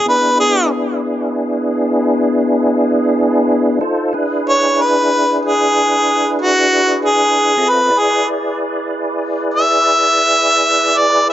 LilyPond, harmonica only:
\new Staff \with { instrumentName = "Harmonica" } { \time 12/8 \key e \mixolydian \tempo 4. = 63 b'8 gis'8 r1 r4 | r4 cis''8 b'4 gis'4. fis'4 gis'4 | b'8 gis'8 r2 e''2~ e''16 d''8 r16 | }